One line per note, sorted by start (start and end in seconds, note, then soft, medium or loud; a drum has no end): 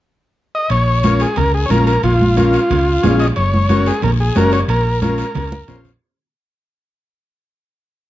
0.55 0.70 D#5 loud
0.70 1.23 A#1 medium
0.70 1.22 C#5 loud
0.70 high timbale medium
0.70 long guiro medium
1.03 1.27 C#4 medium
1.03 1.27 F4 medium
1.03 1.27 A#4 medium
1.03 high conga medium
1.03 high timbale medium
1.03 short guiro medium
1.20 1.38 G#4 medium
1.20 high timbale medium
1.20 short guiro medium
1.36 1.64 C#2 loud
1.36 1.53 A#4 medium
1.36 low conga medium
1.36 high timbale medium
1.36 long guiro medium
1.54 1.67 G#4 medium
1.66 1.93 C#4 medium
1.66 1.70 C#5 medium
1.70 1.97 A#1 medium
1.70 1.93 F4 medium
1.70 1.93 A#4 medium
1.70 1.86 A#4 medium
1.70 high conga medium
1.70 high timbale medium
1.70 short guiro medium
1.87 2.02 A#4 medium
1.87 high timbale medium
1.87 short guiro medium
2.03 2.57 A#1 loud
2.03 2.36 F4 medium
2.03 low conga medium
2.03 high timbale medium
2.03 long guiro medium
2.21 high conga medium
2.36 2.60 C#4 medium
2.36 2.60 F4 medium
2.36 3.16 F4 medium
2.36 2.60 A#4 medium
2.36 high conga medium
2.36 high timbale medium
2.36 short guiro medium
2.53 high timbale medium
2.53 short guiro medium
2.70 2.97 C#2 loud
2.70 low conga medium
2.70 high timbale medium
2.70 long guiro medium
3.03 3.30 A#1 medium
3.03 3.26 C#4 medium
3.03 3.26 F4 medium
3.03 3.26 G#4 loud
3.03 high conga medium
3.03 low conga medium
3.03 high timbale medium
3.03 low timbale medium
3.03 short guiro medium
3.19 3.27 D#5 medium
3.19 high timbale medium
3.19 short guiro medium
3.36 3.90 F#1 loud
3.36 3.88 C#5 medium
3.36 high timbale medium
3.36 long guiro medium
3.54 high conga medium
3.69 3.93 C#4 medium
3.69 3.93 F#4 medium
3.69 3.93 A#4 medium
3.69 high conga medium
3.69 high timbale medium
3.69 short guiro medium
3.86 4.02 G#4 medium
3.86 high timbale medium
3.86 short guiro medium
4.02 4.29 A#1 loud
4.02 4.11 A#4 medium
4.02 low conga medium
4.02 high timbale medium
4.02 long guiro medium
4.20 4.37 G#4 medium
4.35 4.62 F#1 medium
4.35 4.59 C#4 medium
4.35 4.59 F#4 medium
4.35 4.59 A#4 medium
4.35 4.52 A#4 medium
4.35 high conga medium
4.35 high timbale medium
4.35 low timbale medium
4.35 short guiro medium
4.52 4.60 C#5 medium
4.52 high timbale medium
4.52 short guiro medium
4.68 5.21 A#1 loud
4.68 5.00 A#4 medium
4.68 high timbale medium
4.68 long guiro medium
5.01 5.25 C#4 medium
5.01 5.25 F4 medium
5.01 5.26 A#4 medium
5.01 5.81 A#4 medium
5.01 high conga medium
5.01 high timbale medium
5.01 short guiro medium
5.18 high timbale medium
5.18 short guiro medium
5.35 5.62 C#2 loud
5.35 low conga medium
5.35 high timbale medium
5.35 long guiro medium
5.52 high conga medium
5.68 5.95 A#1 medium
5.68 5.92 C#4 medium
5.68 5.92 F4 medium
5.68 5.92 C5 loud
5.68 low conga medium
5.68 high timbale medium
5.68 low timbale medium
5.68 short guiro medium
5.85 low conga medium
5.85 high timbale medium
5.85 short guiro medium